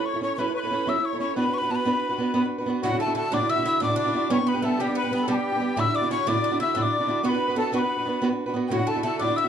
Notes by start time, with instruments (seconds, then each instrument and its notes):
Already playing: steel-string acoustic guitar C#5
0.00 steel-string acoustic guitar E4 A4
0.06 accordion C#5, tin whistle C#6
0.13 steel-string acoustic guitar E4 A4 C#5
0.21 steel-string acoustic guitar C#4 E4 A4 C#5, accordion C#5, tin whistle C#6
0.36 steel-string acoustic guitar F#3 C#4 E4, accordion B4, tin whistle B5 C#6
0.40 steel-string acoustic guitar A4 C#5
0.48 steel-string acoustic guitar E4 A4 C#5
0.54 accordion B4, tin whistle C#6
0.60 steel-string acoustic guitar C#5, tin whistle B5
0.65 steel-string acoustic guitar E4 A4
0.71 steel-string acoustic guitar C#4 E4 A4 C#5
0.87 steel-string acoustic guitar F#3 C#4 E4 A4 C#5, accordion E5, tin whistle E6
0.96 steel-string acoustic guitar E4 A4 C#5
1.03 accordion C#5, tin whistle C#6
1.13 steel-string acoustic guitar E4 A4 C#5
1.19 steel-string acoustic guitar C#4 E4 A4, accordion C#5, tin whistle C#6
1.23 steel-string acoustic guitar C#5
1.35 steel-string acoustic guitar B3 D4 F#4 B4, accordion B4, tin whistle B5
1.45 steel-string acoustic guitar D4 F#4 B4
1.54 tin whistle C#6
1.58 steel-string acoustic guitar B4, tin whistle B5
1.63 steel-string acoustic guitar D4 F#4
1.70 steel-string acoustic guitar B3 D4 F#4 B4, tin whistle A5
1.75 tin whistle B5
1.85 steel-string acoustic guitar B3 D4 F#4 B4
1.93 steel-string acoustic guitar D4 F#4 B4
2.09 steel-string acoustic guitar D4 F#4 B4
2.18 steel-string acoustic guitar B3 D4 F#4 B4
2.34 steel-string acoustic guitar B3 D4 F#4 B4
2.42 steel-string acoustic guitar D4 F#4 B4
2.58 steel-string acoustic guitar D4 F#4 B4
2.66 steel-string acoustic guitar B3 D4 F#4 B4
2.81 steel-string acoustic guitar D2 A2 D3 D4 E4 F#4, bouzouki F#3, accordion F#4, tin whistle F#5
2.91 steel-string acoustic guitar D3 D4 E4 F#4
2.99 bouzouki A3, accordion A4, tin whistle A5
3.06 steel-string acoustic guitar D3 D4 E4 F#4
3.15 steel-string acoustic guitar D3 D4 E4 F#4, bouzouki A3, accordion A4, tin whistle A5
3.31 steel-string acoustic guitar D2 A2 D3 D4 E4 F#4, bouzouki D4, accordion D5, tin whistle D6
3.39 steel-string acoustic guitar D3 D4 E4 F#4
3.49 bouzouki E4, accordion E5, tin whistle E6
3.56 steel-string acoustic guitar D3 D4 E4 F#4
3.62 steel-string acoustic guitar D3 D4 E4, bouzouki E4
3.66 steel-string acoustic guitar F#4, tin whistle E6
3.80 steel-string acoustic guitar D2 A2 D3 D4 E4 F#4, bouzouki D4, accordion D5, tin whistle D6
3.88 steel-string acoustic guitar D3 D4 E4 F#4
3.96 bouzouki D4, accordion D5, tin whistle D6
4.05 steel-string acoustic guitar D3 D4 E4 F#4
4.13 steel-string acoustic guitar D3 D4 E4 F#4
4.30 steel-string acoustic guitar G3 B3 D4 G4, bouzouki C#4, accordion C#5, tin whistle C#6
4.38 steel-string acoustic guitar B3 D4 G4
4.47 bouzouki B3, accordion B4, tin whistle B5
4.54 steel-string acoustic guitar B3 D4 G4
4.62 steel-string acoustic guitar G3 B3 D4 G4, bouzouki A3, accordion A4, tin whistle A5
4.79 steel-string acoustic guitar G3 B3 D4 G4, bouzouki G3, accordion G4, tin whistle G5
4.87 steel-string acoustic guitar B3 D4 G4
4.95 bouzouki B3, accordion B4, tin whistle B5
5.04 steel-string acoustic guitar B3 D4 G4
5.11 steel-string acoustic guitar G3 B3 D4 G4, bouzouki B3, tin whistle B5
5.22 accordion A4
5.27 steel-string acoustic guitar G3 B3 D4 G4, bouzouki G3, accordion G4, tin whistle A5
5.34 steel-string acoustic guitar B3 D4 G4, tin whistle G5
5.52 steel-string acoustic guitar B3 D4 G4
5.60 steel-string acoustic guitar G3 B3 D4 G4
5.76 steel-string acoustic guitar D2 A2 D3 D4 E4 F#4, bouzouki E4, accordion E5, tin whistle E6
5.84 steel-string acoustic guitar D3 D4 E4 F#4
5.94 bouzouki D4, accordion D5, tin whistle D6
6.01 steel-string acoustic guitar D3 D4 E4 F#4
6.09 steel-string acoustic guitar D3 D4 E4 F#4, bouzouki C#4, accordion C#5, tin whistle C#6
6.26 steel-string acoustic guitar D2 A2 D3 D4 E4 F#4, bouzouki D4, accordion D5, tin whistle D6
6.34 steel-string acoustic guitar D3 D4 E4 F#4
6.44 bouzouki D4
6.51 steel-string acoustic guitar D3 D4 E4 F#4
6.59 steel-string acoustic guitar D3 D4 E4 F#4, bouzouki E4, accordion E5, tin whistle E6
6.75 steel-string acoustic guitar D2 A2 D3 D4 E4 F#4, bouzouki D4, accordion D5, tin whistle E6
6.82 steel-string acoustic guitar D3 D4 E4 F#4, tin whistle D6
6.99 steel-string acoustic guitar D3 D4 E4 F#4
7.07 steel-string acoustic guitar D3 D4 E4 F#4
7.23 steel-string acoustic guitar B3 D4 F#4 B4, bouzouki B3, accordion B4, tin whistle C#6
7.29 steel-string acoustic guitar B4, tin whistle B5
7.33 steel-string acoustic guitar D4 F#4
7.48 steel-string acoustic guitar D4 F#4 B4
7.55 bouzouki A3, steel-string acoustic guitar B3 D4 F#4 B4, accordion A4
7.59 tin whistle A5
7.72 steel-string acoustic guitar B3 D4 F#4 B4, bouzouki B3, accordion B4, tin whistle C#6
7.79 steel-string acoustic guitar B4, tin whistle B5
7.83 steel-string acoustic guitar D4 F#4
7.97 steel-string acoustic guitar D4 F#4 B4
8.05 steel-string acoustic guitar B3 D4 F#4 B4
8.22 steel-string acoustic guitar B3 D4 F#4 B4
8.29 steel-string acoustic guitar D4 F#4 B4
8.46 steel-string acoustic guitar D4 F#4 B4
8.54 steel-string acoustic guitar B3 D4 F#4 B4
8.68 steel-string acoustic guitar D2 A2 D3 D4, bouzouki F#3, accordion F#4, tin whistle F#5 G5
8.72 steel-string acoustic guitar E4 F#4
8.77 steel-string acoustic guitar D3 D4 E4 F#4
8.87 bouzouki A3, accordion A4, tin whistle A5
8.95 steel-string acoustic guitar D3 D4 E4 F#4
9.03 steel-string acoustic guitar D3 D4 E4 F#4, bouzouki A3, accordion A4, tin whistle A5
9.19 steel-string acoustic guitar D2 A2 D3 D4 E4 F#4, bouzouki D4, accordion D5, tin whistle D6
9.27 steel-string acoustic guitar D3 D4 E4 F#4
9.36 bouzouki E4, accordion E5, tin whistle E6
9.44 steel-string acoustic guitar E4 F#4